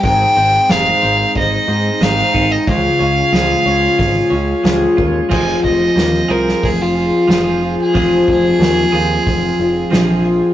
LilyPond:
<<
  \new Staff \with { instrumentName = "Fiddle" } { \time 4/4 \key f \minor \tempo 4 = 91 g''4 f''4 ees''4 f''8. ees''16 | f''2. r4 | aes''8 ees''4 bes'8 aes'16 f'4. aes'16~ | aes'8 aes'2. r8 | }
  \new Staff \with { instrumentName = "Tonewheel organ" } { \time 4/4 \key f \minor <c' ees' aes' c''>1 | <des' f' aes' des''>1 | <c' f' aes' c''>1 | <c' f' aes'>1 | }
  \new Staff \with { instrumentName = "Clean electric guitar" } { \time 4/4 \key f \minor aes,8 c'8 aes8 c'8 ees'8 c'8 aes8 ees'8 | des8 des'8 aes8 des'8 f'8 des'8 aes8 f'8 | <f c' f' aes'>4. <f c' f' aes'>4. <f c' f' aes'>4 | <f c' f' aes'>4. <f c' f' aes'>4. <f c' f' aes'>4 | }
  \new Staff \with { instrumentName = "Twelve-string acoustic guitar" } { \time 4/4 \key f \minor <aes, ees aes c' ees' aes'>8 <aes c' ees' aes'>8 <aes, ees aes c' ees' aes'>4 <aes c' ees' aes'>8 <aes c' ees' aes'>8 <aes, ees aes c' ees' aes'>8 <aes c' ees' aes'>8 | <des f aes f' aes'>8 <aes f' aes'>8 <des f aes f' aes'>4 <f aes f' aes'>8 <aes f' aes'>8 <des f aes f' aes'>8 <f' aes'>8 | <f, c f aes f' aes'>4. <f aes f' aes'>4 <f aes f' aes'>8 <f aes f' aes'>8 <f aes f' aes'>8 | <f, c f aes f' aes'>4. <f aes f' aes'>4 <f aes f' aes'>8 <f aes f' aes'>8 <f aes f' aes'>8 | }
  \new Staff \with { instrumentName = "Picked electric bass" } { \clef bass \time 4/4 \key f \minor aes,,8 aes,,8 f,,8 aes,,8 aes,,8 aes,8 aes,,8 aes,,8 | des,8 des,8 des,8 des,8 aes,,8 des,8 des,8 ees,8 | f,,8 f,,8 ees,8 c,8 f,,4 f,,4 | f,,8 f,,8 ees,8 ees,8 f,,8 f,,8 bes,,4 | }
  \new DrumStaff \with { instrumentName = "Drums" } \drummode { \time 4/4 <hho bd>4 <hho sn>4 <hho bd>4 <hho sn>8 bd8 | <hho bd>4 <hho sn>4 <hho bd>4 <hho sn>8 bd8 | <cymc bd>8 bd8 <hho sn>8. sn16 <hho bd>4 <hho sn>4 | <hho bd>8 bd8 <hho sn>4 <hho bd>4 <hho sn>4 | }
>>